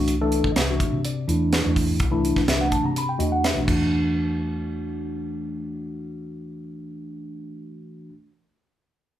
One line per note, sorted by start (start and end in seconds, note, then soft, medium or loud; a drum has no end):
0.00 0.40 C2 medium
0.00 0.15 E3 medium
0.00 0.14 A3 medium
0.00 0.14 D4 medium
0.00 0.14 F#4 medium
0.08 closed hi-hat medium
0.21 0.51 E3 loud
0.21 0.51 A3 medium
0.21 0.51 D4 loud
0.21 0.51 A4 loud
0.32 closed hi-hat soft
0.44 kick medium
0.52 0.55 D#5 medium
0.52 closed hi-hat medium
0.56 0.78 C2 medium
0.56 0.63 D4 soft
0.56 0.63 F#4 soft
0.56 1.01 E5 medium
0.56 snare medium
0.70 0.99 E3 medium
0.70 0.99 A3 medium
0.70 0.99 D4 medium
0.70 0.99 F#4 medium
0.80 kick medium
0.80 closed hi-hat soft
0.92 1.25 C3 medium
1.05 1.10 D4 soft
1.05 1.10 G4 soft
1.05 1.49 D5 medium
1.05 closed hi-hat medium
1.28 1.61 E2 medium
1.28 1.58 E3 medium
1.28 1.58 A3 medium
1.28 1.58 D4 medium
1.28 1.59 E4 medium
1.28 closed hi-hat medium
1.53 1.67 D5 medium
1.53 snare medium
1.53 closed hi-hat medium
1.65 1.97 E2 medium
1.65 2.05 E3 medium
1.65 2.05 A3 medium
1.65 2.05 D4 medium
1.65 2.05 E4 medium
1.76 kick medium
1.76 open hi-hat medium
2.00 2.33 C2 medium
2.00 kick medium
2.00 closed hi-hat medium
2.11 2.42 E3 loud
2.11 2.42 A3 medium
2.11 2.42 D4 medium
2.11 2.42 E4 loud
2.25 closed hi-hat medium
2.36 kick medium
2.36 snare soft
2.47 2.70 C2 medium
2.47 2.53 D4 soft
2.47 2.53 G4 soft
2.47 2.60 E5 medium
2.47 snare medium
2.47 closed hi-hat medium
2.58 2.89 E3 medium
2.58 2.89 A3 medium
2.58 2.89 D4 medium
2.58 2.89 F#4 medium
2.58 2.72 F#5 medium
2.72 2.84 A5 medium
2.72 kick medium
2.72 closed hi-hat soft
2.84 3.17 C3 medium
2.84 2.96 A#5 medium
2.95 3.01 D4 soft
2.95 3.01 F#4 soft
2.95 3.09 B5 medium
2.95 closed hi-hat medium
3.09 3.20 G5 medium
3.18 3.53 E2 medium
3.18 3.50 E3 medium
3.18 3.49 A3 medium
3.18 3.50 D4 medium
3.18 3.50 F#4 medium
3.18 3.32 D#5 medium
3.18 closed hi-hat soft
3.32 3.43 F#5 medium
3.44 3.59 E5 medium
3.44 snare medium
3.44 closed hi-hat medium
3.55 3.66 B1 medium
3.55 3.63 E3 medium
3.55 3.66 A3 medium
3.55 3.67 D4 soft
3.55 3.67 F#4 medium
3.65 8.12 E2 medium
3.65 8.09 E3 medium
3.65 8.11 A3 medium
3.65 8.12 D4 medium
3.65 8.13 F#4 medium
3.65 kick medium
3.65 crash medium